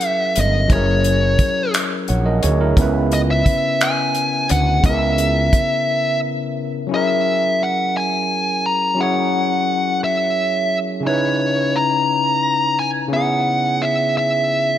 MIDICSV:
0, 0, Header, 1, 6, 480
1, 0, Start_track
1, 0, Tempo, 689655
1, 487, Time_signature, 6, 3, 24, 8
1, 10288, End_track
2, 0, Start_track
2, 0, Title_t, "Lead electric guitar"
2, 0, Program_c, 0, 29
2, 0, Note_on_c, 0, 78, 91
2, 57, Note_off_c, 0, 78, 0
2, 57, Note_on_c, 0, 76, 91
2, 272, Note_on_c, 0, 75, 84
2, 279, Note_off_c, 0, 76, 0
2, 506, Note_off_c, 0, 75, 0
2, 509, Note_on_c, 0, 73, 68
2, 1190, Note_off_c, 0, 73, 0
2, 2180, Note_on_c, 0, 75, 75
2, 2215, Note_off_c, 0, 75, 0
2, 2302, Note_on_c, 0, 76, 80
2, 2664, Note_on_c, 0, 80, 97
2, 2665, Note_off_c, 0, 76, 0
2, 3108, Note_off_c, 0, 80, 0
2, 3142, Note_on_c, 0, 78, 92
2, 3358, Note_off_c, 0, 78, 0
2, 3382, Note_on_c, 0, 76, 79
2, 4307, Note_off_c, 0, 76, 0
2, 4832, Note_on_c, 0, 76, 101
2, 5311, Note_on_c, 0, 78, 103
2, 5313, Note_off_c, 0, 76, 0
2, 5545, Note_off_c, 0, 78, 0
2, 5548, Note_on_c, 0, 80, 107
2, 6028, Note_on_c, 0, 82, 116
2, 6032, Note_off_c, 0, 80, 0
2, 6264, Note_off_c, 0, 82, 0
2, 6268, Note_on_c, 0, 78, 110
2, 6950, Note_off_c, 0, 78, 0
2, 6988, Note_on_c, 0, 76, 97
2, 7490, Note_off_c, 0, 76, 0
2, 7705, Note_on_c, 0, 73, 97
2, 8187, Note_on_c, 0, 82, 111
2, 8190, Note_off_c, 0, 73, 0
2, 8904, Note_on_c, 0, 80, 105
2, 8918, Note_off_c, 0, 82, 0
2, 8967, Note_off_c, 0, 80, 0
2, 9142, Note_on_c, 0, 78, 103
2, 9620, Note_on_c, 0, 76, 90
2, 9628, Note_off_c, 0, 78, 0
2, 9837, Note_off_c, 0, 76, 0
2, 9864, Note_on_c, 0, 76, 96
2, 10288, Note_off_c, 0, 76, 0
2, 10288, End_track
3, 0, Start_track
3, 0, Title_t, "Tine electric piano"
3, 0, Program_c, 1, 4
3, 0, Control_c, 1, 64, 127
3, 0, Note_on_c, 1, 54, 63
3, 0, Note_on_c, 1, 61, 58
3, 0, Note_on_c, 1, 64, 61
3, 0, Note_on_c, 1, 68, 64
3, 0, Note_on_c, 1, 70, 73
3, 448, Note_off_c, 1, 54, 0
3, 456, Note_off_c, 1, 61, 0
3, 463, Note_off_c, 1, 64, 0
3, 466, Note_on_c, 1, 54, 57
3, 471, Note_off_c, 1, 68, 0
3, 478, Note_off_c, 1, 70, 0
3, 479, Note_on_c, 1, 61, 52
3, 493, Note_on_c, 1, 64, 51
3, 509, Note_on_c, 1, 68, 55
3, 524, Note_on_c, 1, 70, 64
3, 1431, Note_off_c, 1, 64, 0
3, 1439, Note_off_c, 1, 68, 0
3, 1447, Note_off_c, 1, 70, 0
3, 1452, Note_on_c, 1, 78, 56
3, 1457, Note_on_c, 1, 73, 45
3, 1564, Note_off_c, 1, 78, 0
3, 1566, Note_off_c, 1, 73, 0
3, 1570, Note_on_c, 1, 75, 61
3, 1574, Note_on_c, 1, 70, 51
3, 1683, Note_off_c, 1, 75, 0
3, 1685, Note_off_c, 1, 70, 0
3, 1691, Note_on_c, 1, 73, 63
3, 1695, Note_on_c, 1, 68, 50
3, 1803, Note_off_c, 1, 73, 0
3, 1805, Note_off_c, 1, 68, 0
3, 1814, Note_on_c, 1, 70, 60
3, 1819, Note_on_c, 1, 64, 53
3, 1888, Note_off_c, 1, 54, 0
3, 1895, Note_off_c, 1, 61, 0
3, 1900, Note_on_c, 1, 49, 71
3, 1916, Note_on_c, 1, 61, 61
3, 1930, Note_on_c, 1, 59, 65
3, 1936, Control_c, 1, 64, 0
3, 1939, Note_off_c, 1, 64, 0
3, 1947, Note_on_c, 1, 64, 64
3, 1960, Note_on_c, 1, 71, 76
3, 2039, Note_off_c, 1, 70, 0
3, 2068, Control_c, 1, 64, 127
3, 3326, Note_off_c, 1, 49, 0
3, 3334, Note_off_c, 1, 61, 0
3, 3341, Note_off_c, 1, 59, 0
3, 3345, Note_on_c, 1, 49, 61
3, 3349, Note_off_c, 1, 64, 0
3, 3356, Note_off_c, 1, 71, 0
3, 3360, Note_on_c, 1, 61, 53
3, 3376, Note_on_c, 1, 59, 55
3, 3390, Note_on_c, 1, 64, 56
3, 3406, Note_on_c, 1, 70, 71
3, 4768, Note_off_c, 1, 49, 0
3, 4776, Note_off_c, 1, 61, 0
3, 4782, Note_on_c, 1, 54, 69
3, 4784, Note_off_c, 1, 59, 0
3, 4791, Note_off_c, 1, 64, 0
3, 4796, Note_on_c, 1, 61, 63
3, 4799, Note_off_c, 1, 70, 0
3, 4811, Note_on_c, 1, 64, 63
3, 4817, Control_c, 1, 64, 0
3, 4828, Note_on_c, 1, 68, 65
3, 4843, Note_on_c, 1, 70, 75
3, 4935, Control_c, 1, 64, 127
3, 6206, Note_off_c, 1, 54, 0
3, 6214, Note_off_c, 1, 61, 0
3, 6221, Note_off_c, 1, 64, 0
3, 6226, Note_on_c, 1, 54, 68
3, 6230, Note_off_c, 1, 68, 0
3, 6237, Note_off_c, 1, 70, 0
3, 6238, Note_on_c, 1, 61, 64
3, 6254, Note_on_c, 1, 64, 60
3, 6268, Note_on_c, 1, 68, 62
3, 6283, Note_on_c, 1, 73, 77
3, 7648, Note_off_c, 1, 54, 0
3, 7655, Note_off_c, 1, 61, 0
3, 7660, Note_on_c, 1, 49, 74
3, 7663, Note_off_c, 1, 64, 0
3, 7669, Note_off_c, 1, 68, 0
3, 7676, Note_on_c, 1, 61, 62
3, 7677, Note_off_c, 1, 73, 0
3, 7691, Note_on_c, 1, 63, 63
3, 7696, Control_c, 1, 64, 0
3, 7705, Note_on_c, 1, 64, 65
3, 7719, Note_on_c, 1, 71, 76
3, 7816, Control_c, 1, 64, 127
3, 9086, Note_off_c, 1, 49, 0
3, 9093, Note_off_c, 1, 61, 0
3, 9101, Note_off_c, 1, 63, 0
3, 9103, Note_on_c, 1, 49, 70
3, 9108, Note_off_c, 1, 64, 0
3, 9115, Note_off_c, 1, 71, 0
3, 9117, Note_on_c, 1, 61, 63
3, 9133, Note_on_c, 1, 59, 64
3, 9147, Note_on_c, 1, 64, 64
3, 9162, Note_on_c, 1, 68, 76
3, 10288, Note_off_c, 1, 49, 0
3, 10288, Note_off_c, 1, 59, 0
3, 10288, Note_off_c, 1, 61, 0
3, 10288, Note_off_c, 1, 64, 0
3, 10288, Note_off_c, 1, 68, 0
3, 10288, End_track
4, 0, Start_track
4, 0, Title_t, "Fretless electric bass"
4, 0, Program_c, 2, 35
4, 259, Note_on_c, 2, 31, 80
4, 469, Note_off_c, 2, 31, 0
4, 493, Note_on_c, 2, 30, 82
4, 942, Note_off_c, 2, 30, 0
4, 1459, Note_on_c, 2, 34, 73
4, 1670, Note_off_c, 2, 34, 0
4, 1697, Note_on_c, 2, 38, 82
4, 1908, Note_off_c, 2, 38, 0
4, 1933, Note_on_c, 2, 37, 85
4, 2382, Note_off_c, 2, 37, 0
4, 3138, Note_on_c, 2, 38, 82
4, 3349, Note_off_c, 2, 38, 0
4, 3372, Note_on_c, 2, 37, 93
4, 3822, Note_off_c, 2, 37, 0
4, 10288, End_track
5, 0, Start_track
5, 0, Title_t, "Muted fretless electric bass strokes"
5, 973, Note_on_c, 9, 29, 42
5, 1043, Note_off_c, 9, 29, 0
5, 2414, Note_on_c, 9, 29, 42
5, 2484, Note_off_c, 9, 29, 0
5, 10288, End_track
6, 0, Start_track
6, 0, Title_t, "Drums"
6, 5, Note_on_c, 9, 42, 41
6, 75, Note_off_c, 9, 42, 0
6, 248, Note_on_c, 9, 42, 69
6, 318, Note_off_c, 9, 42, 0
6, 486, Note_on_c, 9, 36, 99
6, 486, Note_on_c, 9, 42, 57
6, 555, Note_off_c, 9, 36, 0
6, 556, Note_off_c, 9, 42, 0
6, 727, Note_on_c, 9, 42, 44
6, 796, Note_off_c, 9, 42, 0
6, 966, Note_on_c, 9, 42, 57
6, 967, Note_on_c, 9, 36, 80
6, 1036, Note_off_c, 9, 36, 0
6, 1036, Note_off_c, 9, 42, 0
6, 1211, Note_on_c, 9, 42, 69
6, 1216, Note_on_c, 9, 26, 106
6, 1281, Note_off_c, 9, 42, 0
6, 1286, Note_off_c, 9, 26, 0
6, 1446, Note_on_c, 9, 42, 40
6, 1516, Note_off_c, 9, 42, 0
6, 1689, Note_on_c, 9, 42, 70
6, 1758, Note_off_c, 9, 42, 0
6, 1927, Note_on_c, 9, 36, 100
6, 1930, Note_on_c, 9, 42, 60
6, 1996, Note_off_c, 9, 36, 0
6, 1999, Note_off_c, 9, 42, 0
6, 2168, Note_on_c, 9, 42, 43
6, 2238, Note_off_c, 9, 42, 0
6, 2407, Note_on_c, 9, 36, 76
6, 2409, Note_on_c, 9, 42, 57
6, 2477, Note_off_c, 9, 36, 0
6, 2478, Note_off_c, 9, 42, 0
6, 2650, Note_on_c, 9, 42, 71
6, 2655, Note_on_c, 9, 26, 102
6, 2719, Note_off_c, 9, 42, 0
6, 2724, Note_off_c, 9, 26, 0
6, 2885, Note_on_c, 9, 42, 43
6, 2955, Note_off_c, 9, 42, 0
6, 3127, Note_on_c, 9, 42, 73
6, 3197, Note_off_c, 9, 42, 0
6, 3367, Note_on_c, 9, 36, 105
6, 3368, Note_on_c, 9, 42, 65
6, 3436, Note_off_c, 9, 36, 0
6, 3437, Note_off_c, 9, 42, 0
6, 3606, Note_on_c, 9, 42, 45
6, 3676, Note_off_c, 9, 42, 0
6, 3848, Note_on_c, 9, 36, 81
6, 3848, Note_on_c, 9, 42, 58
6, 3918, Note_off_c, 9, 36, 0
6, 3918, Note_off_c, 9, 42, 0
6, 10288, End_track
0, 0, End_of_file